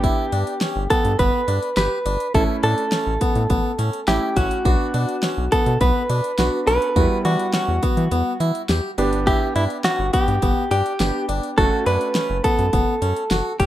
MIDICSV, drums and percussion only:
0, 0, Header, 1, 2, 480
1, 0, Start_track
1, 0, Tempo, 576923
1, 32, Time_signature, 4, 2, 24, 8
1, 11365, End_track
2, 0, Start_track
2, 0, Title_t, "Drums"
2, 31, Note_on_c, 9, 36, 107
2, 31, Note_on_c, 9, 42, 61
2, 114, Note_off_c, 9, 36, 0
2, 114, Note_off_c, 9, 42, 0
2, 270, Note_on_c, 9, 42, 61
2, 353, Note_off_c, 9, 42, 0
2, 391, Note_on_c, 9, 42, 49
2, 475, Note_off_c, 9, 42, 0
2, 509, Note_on_c, 9, 38, 99
2, 510, Note_on_c, 9, 42, 71
2, 592, Note_off_c, 9, 38, 0
2, 593, Note_off_c, 9, 42, 0
2, 752, Note_on_c, 9, 42, 77
2, 754, Note_on_c, 9, 36, 87
2, 835, Note_off_c, 9, 42, 0
2, 837, Note_off_c, 9, 36, 0
2, 871, Note_on_c, 9, 42, 46
2, 955, Note_off_c, 9, 42, 0
2, 991, Note_on_c, 9, 42, 72
2, 993, Note_on_c, 9, 36, 88
2, 1074, Note_off_c, 9, 42, 0
2, 1076, Note_off_c, 9, 36, 0
2, 1232, Note_on_c, 9, 42, 72
2, 1315, Note_off_c, 9, 42, 0
2, 1352, Note_on_c, 9, 42, 50
2, 1436, Note_off_c, 9, 42, 0
2, 1469, Note_on_c, 9, 42, 70
2, 1473, Note_on_c, 9, 38, 107
2, 1552, Note_off_c, 9, 42, 0
2, 1556, Note_off_c, 9, 38, 0
2, 1712, Note_on_c, 9, 42, 78
2, 1795, Note_off_c, 9, 42, 0
2, 1832, Note_on_c, 9, 42, 54
2, 1916, Note_off_c, 9, 42, 0
2, 1951, Note_on_c, 9, 36, 108
2, 1951, Note_on_c, 9, 42, 62
2, 2034, Note_off_c, 9, 36, 0
2, 2035, Note_off_c, 9, 42, 0
2, 2190, Note_on_c, 9, 42, 64
2, 2273, Note_off_c, 9, 42, 0
2, 2311, Note_on_c, 9, 42, 47
2, 2395, Note_off_c, 9, 42, 0
2, 2429, Note_on_c, 9, 38, 99
2, 2430, Note_on_c, 9, 42, 68
2, 2512, Note_off_c, 9, 38, 0
2, 2514, Note_off_c, 9, 42, 0
2, 2671, Note_on_c, 9, 42, 80
2, 2674, Note_on_c, 9, 36, 90
2, 2754, Note_off_c, 9, 42, 0
2, 2757, Note_off_c, 9, 36, 0
2, 2791, Note_on_c, 9, 42, 45
2, 2874, Note_off_c, 9, 42, 0
2, 2911, Note_on_c, 9, 42, 69
2, 2913, Note_on_c, 9, 36, 84
2, 2994, Note_off_c, 9, 42, 0
2, 2996, Note_off_c, 9, 36, 0
2, 3152, Note_on_c, 9, 42, 72
2, 3235, Note_off_c, 9, 42, 0
2, 3273, Note_on_c, 9, 42, 53
2, 3356, Note_off_c, 9, 42, 0
2, 3390, Note_on_c, 9, 42, 71
2, 3393, Note_on_c, 9, 38, 108
2, 3473, Note_off_c, 9, 42, 0
2, 3477, Note_off_c, 9, 38, 0
2, 3632, Note_on_c, 9, 36, 90
2, 3632, Note_on_c, 9, 42, 80
2, 3715, Note_off_c, 9, 42, 0
2, 3716, Note_off_c, 9, 36, 0
2, 3753, Note_on_c, 9, 42, 53
2, 3836, Note_off_c, 9, 42, 0
2, 3872, Note_on_c, 9, 36, 105
2, 3872, Note_on_c, 9, 42, 63
2, 3955, Note_off_c, 9, 36, 0
2, 3955, Note_off_c, 9, 42, 0
2, 4110, Note_on_c, 9, 42, 61
2, 4193, Note_off_c, 9, 42, 0
2, 4232, Note_on_c, 9, 42, 47
2, 4315, Note_off_c, 9, 42, 0
2, 4349, Note_on_c, 9, 38, 100
2, 4351, Note_on_c, 9, 42, 68
2, 4433, Note_off_c, 9, 38, 0
2, 4434, Note_off_c, 9, 42, 0
2, 4592, Note_on_c, 9, 42, 79
2, 4594, Note_on_c, 9, 36, 89
2, 4675, Note_off_c, 9, 42, 0
2, 4678, Note_off_c, 9, 36, 0
2, 4712, Note_on_c, 9, 42, 45
2, 4795, Note_off_c, 9, 42, 0
2, 4831, Note_on_c, 9, 42, 73
2, 4834, Note_on_c, 9, 36, 88
2, 4915, Note_off_c, 9, 42, 0
2, 4917, Note_off_c, 9, 36, 0
2, 5072, Note_on_c, 9, 42, 72
2, 5155, Note_off_c, 9, 42, 0
2, 5193, Note_on_c, 9, 42, 52
2, 5276, Note_off_c, 9, 42, 0
2, 5310, Note_on_c, 9, 42, 70
2, 5314, Note_on_c, 9, 38, 108
2, 5393, Note_off_c, 9, 42, 0
2, 5397, Note_off_c, 9, 38, 0
2, 5553, Note_on_c, 9, 42, 79
2, 5636, Note_off_c, 9, 42, 0
2, 5674, Note_on_c, 9, 42, 53
2, 5757, Note_off_c, 9, 42, 0
2, 5792, Note_on_c, 9, 36, 106
2, 5793, Note_on_c, 9, 42, 63
2, 5875, Note_off_c, 9, 36, 0
2, 5876, Note_off_c, 9, 42, 0
2, 6031, Note_on_c, 9, 42, 63
2, 6114, Note_off_c, 9, 42, 0
2, 6152, Note_on_c, 9, 42, 50
2, 6236, Note_off_c, 9, 42, 0
2, 6269, Note_on_c, 9, 38, 99
2, 6271, Note_on_c, 9, 42, 69
2, 6353, Note_off_c, 9, 38, 0
2, 6354, Note_off_c, 9, 42, 0
2, 6512, Note_on_c, 9, 42, 83
2, 6514, Note_on_c, 9, 36, 93
2, 6596, Note_off_c, 9, 42, 0
2, 6598, Note_off_c, 9, 36, 0
2, 6632, Note_on_c, 9, 42, 46
2, 6716, Note_off_c, 9, 42, 0
2, 6752, Note_on_c, 9, 42, 73
2, 6835, Note_off_c, 9, 42, 0
2, 6992, Note_on_c, 9, 42, 74
2, 7076, Note_off_c, 9, 42, 0
2, 7113, Note_on_c, 9, 42, 52
2, 7197, Note_off_c, 9, 42, 0
2, 7229, Note_on_c, 9, 42, 74
2, 7233, Note_on_c, 9, 38, 108
2, 7313, Note_off_c, 9, 42, 0
2, 7316, Note_off_c, 9, 38, 0
2, 7473, Note_on_c, 9, 42, 81
2, 7556, Note_off_c, 9, 42, 0
2, 7593, Note_on_c, 9, 42, 54
2, 7677, Note_off_c, 9, 42, 0
2, 7712, Note_on_c, 9, 36, 111
2, 7712, Note_on_c, 9, 42, 61
2, 7795, Note_off_c, 9, 36, 0
2, 7795, Note_off_c, 9, 42, 0
2, 7951, Note_on_c, 9, 42, 64
2, 8034, Note_off_c, 9, 42, 0
2, 8072, Note_on_c, 9, 42, 49
2, 8155, Note_off_c, 9, 42, 0
2, 8190, Note_on_c, 9, 38, 99
2, 8191, Note_on_c, 9, 42, 68
2, 8273, Note_off_c, 9, 38, 0
2, 8274, Note_off_c, 9, 42, 0
2, 8432, Note_on_c, 9, 42, 82
2, 8434, Note_on_c, 9, 36, 90
2, 8515, Note_off_c, 9, 42, 0
2, 8518, Note_off_c, 9, 36, 0
2, 8553, Note_on_c, 9, 42, 45
2, 8636, Note_off_c, 9, 42, 0
2, 8672, Note_on_c, 9, 42, 72
2, 8674, Note_on_c, 9, 36, 87
2, 8755, Note_off_c, 9, 42, 0
2, 8757, Note_off_c, 9, 36, 0
2, 8913, Note_on_c, 9, 42, 73
2, 8996, Note_off_c, 9, 42, 0
2, 9034, Note_on_c, 9, 42, 53
2, 9117, Note_off_c, 9, 42, 0
2, 9150, Note_on_c, 9, 42, 74
2, 9154, Note_on_c, 9, 38, 108
2, 9233, Note_off_c, 9, 42, 0
2, 9237, Note_off_c, 9, 38, 0
2, 9393, Note_on_c, 9, 42, 78
2, 9476, Note_off_c, 9, 42, 0
2, 9514, Note_on_c, 9, 42, 52
2, 9597, Note_off_c, 9, 42, 0
2, 9632, Note_on_c, 9, 36, 109
2, 9632, Note_on_c, 9, 42, 63
2, 9715, Note_off_c, 9, 36, 0
2, 9715, Note_off_c, 9, 42, 0
2, 9871, Note_on_c, 9, 42, 64
2, 9954, Note_off_c, 9, 42, 0
2, 9992, Note_on_c, 9, 42, 48
2, 10075, Note_off_c, 9, 42, 0
2, 10109, Note_on_c, 9, 38, 100
2, 10110, Note_on_c, 9, 42, 70
2, 10192, Note_off_c, 9, 38, 0
2, 10193, Note_off_c, 9, 42, 0
2, 10352, Note_on_c, 9, 42, 78
2, 10354, Note_on_c, 9, 36, 89
2, 10435, Note_off_c, 9, 42, 0
2, 10437, Note_off_c, 9, 36, 0
2, 10472, Note_on_c, 9, 42, 44
2, 10556, Note_off_c, 9, 42, 0
2, 10591, Note_on_c, 9, 42, 68
2, 10594, Note_on_c, 9, 36, 91
2, 10675, Note_off_c, 9, 42, 0
2, 10677, Note_off_c, 9, 36, 0
2, 10833, Note_on_c, 9, 42, 74
2, 10916, Note_off_c, 9, 42, 0
2, 10953, Note_on_c, 9, 42, 52
2, 11037, Note_off_c, 9, 42, 0
2, 11070, Note_on_c, 9, 42, 72
2, 11074, Note_on_c, 9, 38, 108
2, 11153, Note_off_c, 9, 42, 0
2, 11157, Note_off_c, 9, 38, 0
2, 11312, Note_on_c, 9, 42, 76
2, 11313, Note_on_c, 9, 36, 91
2, 11365, Note_off_c, 9, 36, 0
2, 11365, Note_off_c, 9, 42, 0
2, 11365, End_track
0, 0, End_of_file